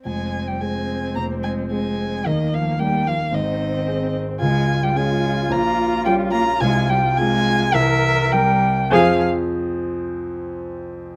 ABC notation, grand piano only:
X:1
M:4/4
L:1/8
Q:1/4=108
K:Fm
V:1 name="Grand piano"
[F,,,F,,]2 [A,CA]2 [F,,,F,,]2 [A,CA]2 | [E,,E,]2 [B,EG]2 [A,,,A,,]2 [CEA]2 | [D,,D,]2 [DFA]2 [B,,,B,,]2 [DFG]2 | [C,,C,]2 [CFA]2 [C,,C,]2 [CGB]2 |
[F,,F,CAca] z6 z |]